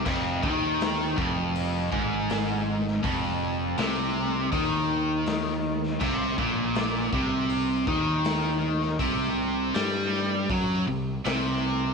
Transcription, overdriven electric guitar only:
X:1
M:4/4
L:1/8
Q:1/4=80
K:F
V:1 name="Overdriven electric guitar" clef=bass
F,, _E,2 F,,2 _A,,3 | F,,2 C,2 _E,4 | C, B,,2 C,2 _E,3 | C,2 G,2 ^F, C, C,2 |]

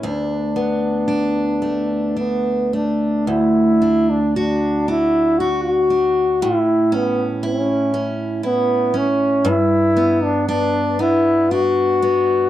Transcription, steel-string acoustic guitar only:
X:1
M:3/4
L:1/8
Q:1/4=58
K:D
V:1 name="Steel-string acoustic guitar"
[D,,D] B, D A, D A, | D,, D F D F D | A,, C E C E C | G,, B, D B, D B, |]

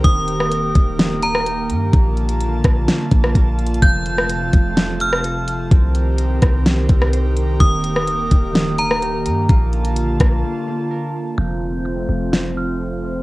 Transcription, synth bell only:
X:1
M:4/4
L:1/8
Q:1/4=127
K:Eblyd
V:1 name="Synth bell"
e'4- e' b z2 | z8 | g'4- g' f' z2 | z8 |
e'4- e' b z2 | z8 | g'4- g' f' z2 |]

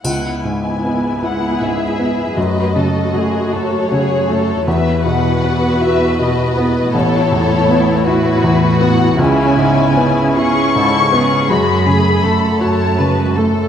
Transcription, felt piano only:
X:1
M:6/8
L:1/8
Q:3/8=53
K:C#m
V:1 name="Felt piano" clef=bass
C,, G,, B, E G,, B, | F,, C, A, F C, A, | E,, B,, B, F B,, B, | A,,, E,, B, E E,, B, |
C,, G,, B, E G,, B, | F,, C, A, F C, A, |]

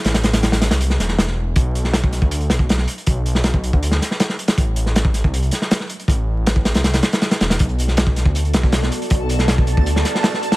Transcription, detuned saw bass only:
X:1
M:4/4
L:1/16
Q:1/4=159
K:Bphr
V:1 name="Detuned saw bass" clef=bass
A,,,6- A,,, C,,3 E,,,2 E,,,4 | B,,,6- B,,, D,,3 B,,,4 z2 | B,,,6- B,,, D,,3 z6 | A,,,6- A,,, C,,3 z6 |
A,,,6- A,,, C,,3 z4 E,,,2 | B,,,6- B,,, D,,3 B,,,4 z2 | B,,,6- B,,, D,,3 z6 |]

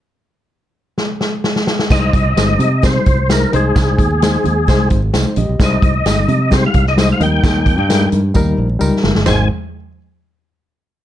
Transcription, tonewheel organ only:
X:1
M:4/4
L:1/16
Q:1/4=131
K:Ab
V:1 name="Tonewheel organ"
z16 | e8 c4 B2 A2- | A8- A2 z6 | e8 c f2 e e f g2- |
g6 z8 z2 | a2 z12 z2 |]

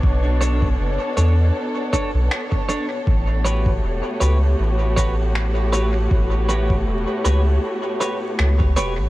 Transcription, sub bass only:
X:1
M:4/4
L:1/16
Q:"Swing 16ths" 1/4=79
K:Amix
V:1 name="Sub bass" clef=bass
B,,,4 F,,, z E,,2 z3 B,,, z4 | A,,,4 E,,, z C,,2 A,,,8 | A,,,4 E,,, z C,,2 z4 C,,2 E,,, A,,, |]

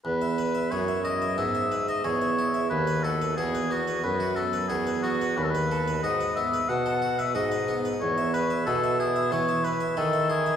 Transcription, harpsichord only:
X:1
M:4/4
L:1/16
Q:1/4=91
K:E
V:1 name="Harpsichord"
z e B e G e E e B, e B e G e E e | z B F B F B B, B z F B, B F B B, B | z B A B F B B, B z A F B F B B, B | z e B e G e E e B, e B e G e E e |]
V:2 name="Harpsichord" clef=bass
E,,4 F,,4 G,,4 E,,4 | D,,4 E,,4 F,,4 E,,4 | D,,4 G,,2 z2 B,,4 G,,4 | E,,4 B,,4 E,4 D,4 |]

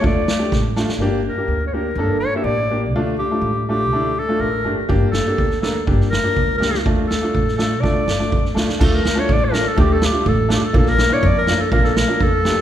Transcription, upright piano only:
X:1
M:2/4
L:1/16
Q:1/4=123
K:Dm
V:1 name="Upright piano"
[A,DF]2 z [A,DG] z2 [A,DF] z | [B,DG]2 z [B,DG] z2 [B,DG] z | [B,DA]2 z [B,DG] z2 [B,DG] z | [A,DF]2 z [A,DF] z2 [A,DF] z |
[A,DE]2 z [A,DF] z2 [A,DG] z | [B,DG]2 z [B,DG] z2 [B,DB] z | [B,DG]2 z [B,DF] z2 [B,DG] z | [A,DF]2 z [A,DF] z2 [A,DF] z |
[A,DF]2 z [A,DF] z2 [A,DF] z | [A,DF]2 z [A,DF] z2 [A,DF] z | [A,DG]2 z [A,DF] z2 [A,DF] z | [B,DF]2 z [B,DE] z2 [B,DF] z |
[B,DF]2 z [B,DF] z2 [B,DG] z |]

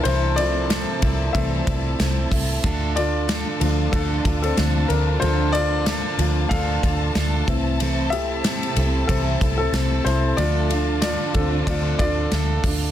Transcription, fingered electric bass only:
X:1
M:4/4
L:1/16
Q:"Swing 16ths" 1/4=93
K:Dm
V:1 name="Fingered electric bass" clef=bass
C,,4- C,, z C,,2 C,,2 C,,2 C,,2 C,,2 | D,,4- D,, z D,,2 D,,2 D,,2 D,,2 D,,2 | D,,4- D,, z D,,2 D,,2 D,,2 D,,2 C,,2- | C,,4- C,, z C,,2 C,,2 C,,2 C,,2 C,,2 |
D,,4- D,, z D,,2 D,,2 D,,2 D,,2 D,,2 |]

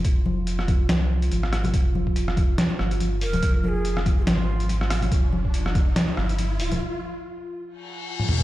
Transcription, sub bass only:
X:1
M:4/4
L:1/8
Q:"Swing 16ths" 1/4=142
K:Fm
V:1 name="Sub bass" clef=bass
F,,,4 C,,2 A,,,2 | F,,,4 z G,,,3 | F,,,4 A,,,4 | F,,,4 z G,,,3 |
z8 |]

